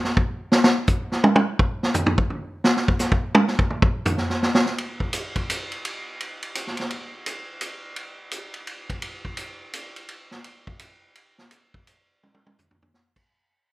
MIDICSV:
0, 0, Header, 1, 2, 480
1, 0, Start_track
1, 0, Tempo, 354610
1, 717, Time_signature, 3, 2, 24, 8
1, 18577, End_track
2, 0, Start_track
2, 0, Title_t, "Drums"
2, 61, Note_on_c, 9, 38, 54
2, 197, Note_off_c, 9, 38, 0
2, 229, Note_on_c, 9, 36, 82
2, 364, Note_off_c, 9, 36, 0
2, 700, Note_on_c, 9, 38, 109
2, 836, Note_off_c, 9, 38, 0
2, 865, Note_on_c, 9, 38, 103
2, 1000, Note_off_c, 9, 38, 0
2, 1181, Note_on_c, 9, 44, 61
2, 1191, Note_on_c, 9, 36, 83
2, 1316, Note_off_c, 9, 44, 0
2, 1327, Note_off_c, 9, 36, 0
2, 1512, Note_on_c, 9, 38, 45
2, 1648, Note_off_c, 9, 38, 0
2, 1674, Note_on_c, 9, 48, 103
2, 1810, Note_off_c, 9, 48, 0
2, 1836, Note_on_c, 9, 48, 102
2, 1972, Note_off_c, 9, 48, 0
2, 2157, Note_on_c, 9, 36, 83
2, 2292, Note_off_c, 9, 36, 0
2, 2477, Note_on_c, 9, 38, 56
2, 2612, Note_off_c, 9, 38, 0
2, 2624, Note_on_c, 9, 44, 62
2, 2631, Note_on_c, 9, 43, 98
2, 2760, Note_off_c, 9, 44, 0
2, 2767, Note_off_c, 9, 43, 0
2, 2794, Note_on_c, 9, 43, 108
2, 2929, Note_off_c, 9, 43, 0
2, 2950, Note_on_c, 9, 36, 80
2, 3085, Note_off_c, 9, 36, 0
2, 3114, Note_on_c, 9, 43, 46
2, 3249, Note_off_c, 9, 43, 0
2, 3576, Note_on_c, 9, 38, 106
2, 3711, Note_off_c, 9, 38, 0
2, 3744, Note_on_c, 9, 38, 56
2, 3879, Note_off_c, 9, 38, 0
2, 3903, Note_on_c, 9, 36, 75
2, 4038, Note_off_c, 9, 36, 0
2, 4049, Note_on_c, 9, 44, 65
2, 4056, Note_on_c, 9, 38, 44
2, 4184, Note_off_c, 9, 44, 0
2, 4191, Note_off_c, 9, 38, 0
2, 4220, Note_on_c, 9, 36, 80
2, 4355, Note_off_c, 9, 36, 0
2, 4529, Note_on_c, 9, 48, 116
2, 4665, Note_off_c, 9, 48, 0
2, 4705, Note_on_c, 9, 38, 39
2, 4840, Note_off_c, 9, 38, 0
2, 4858, Note_on_c, 9, 36, 85
2, 4994, Note_off_c, 9, 36, 0
2, 5013, Note_on_c, 9, 47, 43
2, 5149, Note_off_c, 9, 47, 0
2, 5175, Note_on_c, 9, 36, 91
2, 5310, Note_off_c, 9, 36, 0
2, 5485, Note_on_c, 9, 44, 56
2, 5491, Note_on_c, 9, 43, 113
2, 5620, Note_off_c, 9, 44, 0
2, 5627, Note_off_c, 9, 43, 0
2, 5650, Note_on_c, 9, 38, 43
2, 5786, Note_off_c, 9, 38, 0
2, 5818, Note_on_c, 9, 38, 46
2, 5954, Note_off_c, 9, 38, 0
2, 5990, Note_on_c, 9, 38, 66
2, 6125, Note_off_c, 9, 38, 0
2, 6153, Note_on_c, 9, 38, 102
2, 6289, Note_off_c, 9, 38, 0
2, 6309, Note_on_c, 9, 38, 43
2, 6445, Note_off_c, 9, 38, 0
2, 6474, Note_on_c, 9, 51, 56
2, 6610, Note_off_c, 9, 51, 0
2, 6772, Note_on_c, 9, 36, 47
2, 6907, Note_off_c, 9, 36, 0
2, 6941, Note_on_c, 9, 44, 55
2, 6941, Note_on_c, 9, 51, 69
2, 7076, Note_off_c, 9, 44, 0
2, 7076, Note_off_c, 9, 51, 0
2, 7249, Note_on_c, 9, 51, 41
2, 7253, Note_on_c, 9, 36, 49
2, 7385, Note_off_c, 9, 51, 0
2, 7388, Note_off_c, 9, 36, 0
2, 7440, Note_on_c, 9, 44, 62
2, 7440, Note_on_c, 9, 51, 72
2, 7575, Note_off_c, 9, 44, 0
2, 7575, Note_off_c, 9, 51, 0
2, 7738, Note_on_c, 9, 51, 40
2, 7873, Note_off_c, 9, 51, 0
2, 7917, Note_on_c, 9, 51, 63
2, 8052, Note_off_c, 9, 51, 0
2, 8399, Note_on_c, 9, 51, 55
2, 8534, Note_off_c, 9, 51, 0
2, 8697, Note_on_c, 9, 51, 45
2, 8833, Note_off_c, 9, 51, 0
2, 8870, Note_on_c, 9, 44, 54
2, 8870, Note_on_c, 9, 51, 73
2, 9005, Note_off_c, 9, 44, 0
2, 9005, Note_off_c, 9, 51, 0
2, 9030, Note_on_c, 9, 38, 30
2, 9165, Note_on_c, 9, 51, 45
2, 9166, Note_off_c, 9, 38, 0
2, 9198, Note_on_c, 9, 38, 42
2, 9300, Note_off_c, 9, 51, 0
2, 9333, Note_off_c, 9, 38, 0
2, 9346, Note_on_c, 9, 51, 55
2, 9482, Note_off_c, 9, 51, 0
2, 9828, Note_on_c, 9, 44, 66
2, 9828, Note_on_c, 9, 51, 65
2, 9964, Note_off_c, 9, 44, 0
2, 9964, Note_off_c, 9, 51, 0
2, 10298, Note_on_c, 9, 44, 60
2, 10298, Note_on_c, 9, 51, 65
2, 10433, Note_off_c, 9, 44, 0
2, 10433, Note_off_c, 9, 51, 0
2, 10777, Note_on_c, 9, 51, 57
2, 10912, Note_off_c, 9, 51, 0
2, 11254, Note_on_c, 9, 44, 53
2, 11254, Note_on_c, 9, 51, 63
2, 11390, Note_off_c, 9, 44, 0
2, 11390, Note_off_c, 9, 51, 0
2, 11556, Note_on_c, 9, 51, 46
2, 11691, Note_off_c, 9, 51, 0
2, 11736, Note_on_c, 9, 51, 57
2, 11871, Note_off_c, 9, 51, 0
2, 12042, Note_on_c, 9, 36, 52
2, 12044, Note_on_c, 9, 51, 40
2, 12177, Note_off_c, 9, 36, 0
2, 12179, Note_off_c, 9, 51, 0
2, 12209, Note_on_c, 9, 51, 64
2, 12345, Note_off_c, 9, 51, 0
2, 12518, Note_on_c, 9, 36, 43
2, 12653, Note_off_c, 9, 36, 0
2, 12682, Note_on_c, 9, 44, 58
2, 12682, Note_on_c, 9, 51, 69
2, 12818, Note_off_c, 9, 44, 0
2, 12818, Note_off_c, 9, 51, 0
2, 13176, Note_on_c, 9, 44, 54
2, 13176, Note_on_c, 9, 51, 70
2, 13312, Note_off_c, 9, 44, 0
2, 13312, Note_off_c, 9, 51, 0
2, 13483, Note_on_c, 9, 51, 46
2, 13619, Note_off_c, 9, 51, 0
2, 13652, Note_on_c, 9, 51, 59
2, 13787, Note_off_c, 9, 51, 0
2, 13959, Note_on_c, 9, 38, 36
2, 14094, Note_off_c, 9, 38, 0
2, 14135, Note_on_c, 9, 51, 56
2, 14270, Note_off_c, 9, 51, 0
2, 14446, Note_on_c, 9, 36, 62
2, 14581, Note_off_c, 9, 36, 0
2, 14611, Note_on_c, 9, 44, 63
2, 14611, Note_on_c, 9, 51, 74
2, 14746, Note_off_c, 9, 44, 0
2, 14746, Note_off_c, 9, 51, 0
2, 15098, Note_on_c, 9, 51, 59
2, 15234, Note_off_c, 9, 51, 0
2, 15408, Note_on_c, 9, 38, 42
2, 15544, Note_off_c, 9, 38, 0
2, 15577, Note_on_c, 9, 44, 57
2, 15577, Note_on_c, 9, 51, 65
2, 15712, Note_off_c, 9, 44, 0
2, 15712, Note_off_c, 9, 51, 0
2, 15895, Note_on_c, 9, 36, 63
2, 16030, Note_off_c, 9, 36, 0
2, 16068, Note_on_c, 9, 44, 54
2, 16068, Note_on_c, 9, 51, 69
2, 16204, Note_off_c, 9, 44, 0
2, 16204, Note_off_c, 9, 51, 0
2, 16559, Note_on_c, 9, 48, 44
2, 16695, Note_off_c, 9, 48, 0
2, 16710, Note_on_c, 9, 48, 50
2, 16845, Note_off_c, 9, 48, 0
2, 16872, Note_on_c, 9, 48, 66
2, 17008, Note_off_c, 9, 48, 0
2, 17032, Note_on_c, 9, 44, 51
2, 17038, Note_on_c, 9, 43, 64
2, 17167, Note_off_c, 9, 44, 0
2, 17174, Note_off_c, 9, 43, 0
2, 17202, Note_on_c, 9, 43, 70
2, 17338, Note_off_c, 9, 43, 0
2, 17359, Note_on_c, 9, 43, 83
2, 17494, Note_off_c, 9, 43, 0
2, 17516, Note_on_c, 9, 38, 61
2, 17651, Note_off_c, 9, 38, 0
2, 17815, Note_on_c, 9, 49, 68
2, 17816, Note_on_c, 9, 36, 70
2, 17951, Note_off_c, 9, 36, 0
2, 17951, Note_off_c, 9, 49, 0
2, 18577, End_track
0, 0, End_of_file